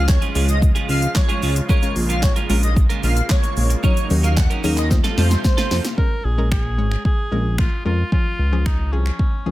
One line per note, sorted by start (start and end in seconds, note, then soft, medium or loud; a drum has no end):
0.00 0.18 C#2 loud
0.00 4.87 C#3 medium
0.00 1.67 F3 medium
0.00 0.16 G#3 medium
0.00 3.80 G#3 medium
0.00 0.16 C#4 medium
0.00 0.17 F4 medium
0.00 3.80 F4 medium
0.00 0.17 C#5 medium
0.08 0.19 C#5 medium
0.08 muted clean electric guitar stroke soft
0.08 kick loud
0.08 snare loud
0.08 clap loud
0.08 shaker medium
0.21 0.34 G#3 medium
0.21 0.34 C#4 medium
0.21 0.35 F4 medium
0.21 0.35 G#4 medium
0.21 closed hi-hat medium
0.21 shaker medium
0.35 0.72 C#2 loud
0.35 0.54 G#3 loud
0.35 1.04 G#3 medium
0.35 1.05 C#4 medium
0.35 0.48 C#4 loud
0.35 1.05 F4 medium
0.35 0.48 F4 medium
0.35 0.47 G#4 loud
0.35 1.05 C#5 medium
0.35 open hi-hat medium
0.35 shaker medium
0.48 0.59 D#5 medium
0.48 muted clean electric guitar stroke soft
0.48 closed hi-hat medium
0.48 shaker medium
0.62 muted clean electric guitar stroke soft
0.62 kick loud
0.62 shaker medium
0.75 0.87 G#3 medium
0.75 0.88 C#4 medium
0.75 0.88 F4 medium
0.75 0.89 G#4 medium
0.75 closed hi-hat medium
0.75 shaker medium
0.89 1.07 C#2 loud
0.89 1.04 G#3 medium
0.89 1.02 C#4 medium
0.89 1.01 F4 medium
0.89 1.01 G#4 medium
0.89 1.09 F5 medium
0.89 open hi-hat medium
0.89 shaker medium
1.02 muted clean electric guitar stroke soft
1.02 closed hi-hat medium
1.02 shaker medium
1.15 1.54 C#5 medium
1.15 muted clean electric guitar stroke soft
1.15 kick loud
1.15 snare loud
1.15 clap loud
1.15 shaker medium
1.29 1.41 G#3 medium
1.29 1.41 C#4 medium
1.29 1.42 F4 medium
1.29 1.42 G#4 medium
1.29 closed hi-hat medium
1.29 shaker medium
1.42 1.61 C#2 medium
1.42 1.57 G#3 medium
1.42 1.55 C#4 medium
1.42 1.55 F4 medium
1.42 1.54 G#4 medium
1.42 open hi-hat medium
1.42 shaker medium
1.56 muted clean electric guitar stroke soft
1.56 closed hi-hat medium
1.56 shaker medium
1.69 1.94 G#3 medium
1.69 1.78 G#3 medium
1.69 4.88 A#3 medium
1.69 1.78 C#4 medium
1.69 1.94 C#4 medium
1.69 1.78 F4 medium
1.69 1.94 F4 medium
1.69 1.78 A#4 medium
1.69 1.95 A#4 medium
1.69 1.90 C#5 loud
1.69 kick loud
1.69 shaker medium
1.82 2.26 G#3 medium
1.82 2.26 C#4 medium
1.82 2.26 F4 medium
1.82 2.26 A#4 medium
1.82 closed hi-hat medium
1.82 shaker medium
1.96 2.33 A#1 loud
1.96 muted clean electric guitar stroke soft
1.96 open hi-hat medium
1.96 shaker medium
2.09 2.21 G#3 medium
2.09 2.22 C#4 medium
2.09 2.22 F4 medium
2.09 2.22 A#4 medium
2.09 2.20 F5 medium
2.09 closed hi-hat medium
2.09 shaker medium
2.22 2.33 C#5 medium
2.22 muted clean electric guitar stroke soft
2.22 kick loud
2.22 snare loud
2.22 clap loud
2.22 shaker medium
2.36 2.48 G#3 medium
2.36 2.48 C#4 medium
2.36 2.49 F4 medium
2.36 2.49 A#4 medium
2.36 closed hi-hat medium
2.36 shaker medium
2.49 2.86 A#1 medium
2.49 2.69 G#3 medium
2.49 3.19 G#3 medium
2.49 3.19 C#4 medium
2.49 2.63 C#4 medium
2.49 3.19 F4 medium
2.49 2.62 F4 medium
2.49 3.19 A#4 medium
2.49 2.61 A#4 medium
2.49 open hi-hat medium
2.49 shaker medium
2.63 2.73 D#5 medium
2.63 muted clean electric guitar stroke soft
2.63 closed hi-hat medium
2.63 shaker medium
2.76 muted clean electric guitar stroke soft
2.76 kick loud
2.76 shaker medium
2.89 3.02 G#3 medium
2.89 3.02 C#4 medium
2.89 3.03 F4 medium
2.89 3.03 A#4 medium
2.89 closed hi-hat medium
2.89 shaker medium
3.03 3.22 A#1 loud
3.03 3.18 G#3 medium
3.03 3.16 C#4 medium
3.03 3.16 F4 medium
3.03 3.15 A#4 medium
3.03 3.23 F5 medium
3.03 open hi-hat medium
3.03 shaker medium
3.16 muted clean electric guitar stroke soft
3.16 closed hi-hat medium
3.16 shaker medium
3.29 3.68 C#5 medium
3.29 muted clean electric guitar stroke soft
3.29 kick loud
3.29 snare loud
3.29 clap loud
3.29 shaker medium
3.43 muted clean electric guitar stroke soft
3.43 closed hi-hat medium
3.43 shaker medium
3.57 3.75 A#1 loud
3.57 open hi-hat medium
3.57 shaker soft
3.70 muted clean electric guitar stroke soft
3.70 closed hi-hat medium
3.70 shaker medium
3.83 4.08 F#3 medium
3.83 4.01 F#3 medium
3.83 4.90 F#3 medium
3.83 4.01 C#4 medium
3.83 4.08 C#4 medium
3.83 4.90 D#4 medium
3.83 4.01 D#4 medium
3.83 4.09 D#4 medium
3.83 4.01 A#4 medium
3.83 4.09 A#4 medium
3.83 4.04 C#5 loud
3.83 kick loud
3.83 shaker medium
3.97 closed hi-hat medium
3.97 shaker medium
4.10 4.47 D#2 loud
4.10 4.45 F#3 medium
4.10 4.45 C#4 medium
4.10 4.45 D#4 medium
4.10 4.45 A#4 medium
4.10 muted clean electric guitar stroke medium
4.10 open hi-hat medium
4.10 shaker medium
4.23 4.36 F#3 medium
4.23 4.36 C#4 medium
4.23 4.36 D#4 medium
4.23 4.37 A#4 medium
4.23 4.34 F5 medium
4.23 closed hi-hat medium
4.23 shaker medium
4.37 4.47 F#5 medium
4.37 muted clean electric guitar stroke soft
4.37 kick loud
4.37 snare loud
4.37 clap loud
4.37 shaker medium
4.50 4.62 F#3 medium
4.50 4.63 C#4 medium
4.50 4.63 D#4 medium
4.50 4.64 A#4 medium
4.50 closed hi-hat medium
4.50 shaker medium
4.63 5.01 D#2 loud
4.63 4.83 F#3 medium
4.63 4.91 F#3 medium
4.63 4.91 C#4 medium
4.63 4.77 C#4 loud
4.63 4.91 D#4 medium
4.63 4.77 D#4 loud
4.63 4.91 G#4 medium
4.63 4.76 A#4 loud
4.63 open hi-hat medium
4.63 shaker medium
4.77 4.88 D#5 medium
4.77 muted clean electric guitar stroke soft
4.77 clap medium
4.77 closed hi-hat medium
4.77 shaker medium
4.90 5.97 C3 medium
4.90 5.97 F3 medium
4.90 5.76 A3 medium
4.90 5.97 A3 medium
4.90 5.76 C4 medium
4.90 5.76 F4 medium
4.90 5.97 F4 medium
4.90 5.77 C5 medium
4.90 muted clean electric guitar stroke soft
4.90 kick loud
4.90 snare medium
4.90 shaker medium
5.04 5.16 A3 medium
5.04 5.17 C4 medium
5.04 5.17 F4 medium
5.04 5.18 A4 medium
5.04 snare medium
5.04 closed hi-hat medium
5.04 shaker medium
5.17 5.36 F2 loud
5.17 5.32 A3 medium
5.17 5.31 C4 medium
5.17 5.30 F4 medium
5.17 5.29 A4 medium
5.17 5.38 C5 medium
5.17 snare medium
5.17 open hi-hat medium
5.17 shaker medium
5.31 muted clean electric guitar stroke soft
5.31 snare medium
5.31 closed hi-hat medium
5.31 shaker medium
5.44 5.82 C5 medium
5.44 muted clean electric guitar stroke soft
5.44 kick loud
5.44 snare medium
5.44 shaker medium
5.57 5.70 A3 medium
5.57 5.70 C4 medium
5.57 5.71 F4 medium
5.57 5.71 A4 medium
5.57 snare medium
5.57 closed hi-hat medium
5.57 shaker medium
5.71 5.80 F2 medium
5.71 5.86 A3 medium
5.71 5.84 C4 medium
5.71 5.84 F4 medium
5.71 5.83 A4 medium
5.71 snare loud
5.71 open hi-hat medium
5.71 shaker medium
5.84 muted clean electric guitar stroke medium
5.84 snare loud
5.84 closed hi-hat medium
5.84 shaker medium
5.98 6.24 G#3 medium
5.98 6.24 C#4 medium
5.98 6.26 A#4 loud
5.98 6.24 A#4 medium
5.98 kick loud
6.25 6.80 A#1 loud
6.25 6.51 G#4 loud
6.38 6.64 G#3 medium
6.38 6.64 C#4 medium
6.38 6.64 A#4 medium
6.51 7.01 G#4 loud
6.51 finger snap loud
6.51 kick loud
6.78 6.97 G#1 medium
6.78 7.13 G#3 medium
6.78 7.13 C#4 medium
6.78 7.13 C#5 medium
6.91 finger snap medium
7.05 7.55 G#4 loud
7.05 kick loud
7.32 7.68 A#1 loud
7.32 7.66 G#3 medium
7.32 7.66 C#4 medium
7.32 7.67 A#4 medium
7.58 7.84 F4 medium
7.58 finger snap loud
7.58 kick loud
7.85 8.04 F2 medium
7.85 8.03 G#3 medium
7.85 8.03 C#4 medium
7.85 8.11 F4 medium
7.85 8.03 A#4 medium
8.12 8.38 F3 medium
8.12 8.38 C#4 medium
8.12 8.68 F4 medium
8.12 8.38 G#4 medium
8.12 kick loud
8.39 8.94 C#2 medium
8.52 8.78 F3 medium
8.52 8.78 C#4 medium
8.52 8.79 G#4 medium
8.66 8.94 D#4 medium
8.66 finger snap loud
8.66 kick loud
8.92 9.11 C2 loud
8.92 9.27 F3 medium
8.92 9.27 C#4 medium
8.92 9.51 C#4 medium
8.92 9.27 G#4 medium
9.06 finger snap medium
9.19 kick loud
9.46 9.51 C#2 loud
9.46 9.51 F3 medium
9.46 9.51 C#4 medium
9.46 9.51 G#4 medium